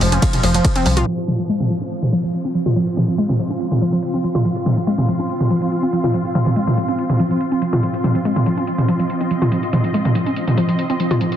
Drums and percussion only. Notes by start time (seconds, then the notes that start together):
0.01 open hi-hat
0.12 closed hi-hat
0.22 kick, closed hi-hat, ride
0.33 closed hi-hat, mid tom
0.43 open hi-hat
0.54 closed hi-hat
0.65 kick, closed hi-hat, ride
0.76 closed hi-hat
0.86 open hi-hat
0.97 closed hi-hat, mid tom
1.28 closed hi-hat, mid tom
1.49 closed hi-hat
1.60 closed hi-hat, mid tom
1.70 closed hi-hat
1.81 closed hi-hat
1.91 closed hi-hat
2.02 closed hi-hat, mid tom
2.13 closed hi-hat
2.24 closed hi-hat
2.34 closed hi-hat
2.45 closed hi-hat
2.55 closed hi-hat
2.66 closed hi-hat, mid tom
2.76 closed hi-hat
2.87 closed hi-hat
2.97 closed hi-hat, mid tom
3.08 closed hi-hat
3.18 closed hi-hat
3.29 closed hi-hat, mid tom
3.39 closed hi-hat
3.50 closed hi-hat
3.60 closed hi-hat
3.71 closed hi-hat, mid tom
3.82 closed hi-hat
3.93 closed hi-hat
4.03 closed hi-hat
4.14 closed hi-hat
4.24 closed hi-hat
4.35 closed hi-hat, mid tom
4.45 closed hi-hat
4.56 closed hi-hat
4.66 closed hi-hat, mid tom
4.77 closed hi-hat
4.87 closed hi-hat
4.98 closed hi-hat, mid tom
5.08 closed hi-hat
5.19 closed hi-hat
5.30 closed hi-hat
5.41 closed hi-hat, mid tom
5.51 closed hi-hat
5.62 closed hi-hat
5.72 closed hi-hat
5.83 closed hi-hat
5.93 closed hi-hat
6.04 closed hi-hat, mid tom
6.14 closed hi-hat
6.25 closed hi-hat
6.35 closed hi-hat, mid tom
6.46 closed hi-hat, mid tom
6.56 closed hi-hat
6.67 closed hi-hat, mid tom
6.77 closed hi-hat
6.88 closed hi-hat
6.99 closed hi-hat
7.10 closed hi-hat, mid tom
7.20 closed hi-hat
7.31 closed hi-hat
7.41 closed hi-hat
7.52 closed hi-hat
7.62 closed hi-hat
7.73 closed hi-hat, mid tom
7.83 closed hi-hat
7.94 closed hi-hat
8.04 closed hi-hat, mid tom
8.15 closed hi-hat
8.25 closed hi-hat
8.36 closed hi-hat, mid tom
8.46 closed hi-hat
8.57 closed hi-hat
8.67 closed hi-hat
8.78 closed hi-hat, mid tom
8.88 closed hi-hat
9.00 closed hi-hat
9.10 closed hi-hat
9.21 closed hi-hat
9.31 closed hi-hat
9.42 closed hi-hat, mid tom
9.52 closed hi-hat
9.63 closed hi-hat
9.73 closed hi-hat, mid tom
9.84 closed hi-hat
9.94 closed hi-hat
10.05 closed hi-hat, mid tom
10.15 closed hi-hat
10.26 closed hi-hat
10.36 closed hi-hat
10.47 closed hi-hat, mid tom
10.58 closed hi-hat
10.69 closed hi-hat
10.79 closed hi-hat
10.90 closed hi-hat
11.00 closed hi-hat
11.11 closed hi-hat, mid tom
11.21 closed hi-hat
11.32 closed hi-hat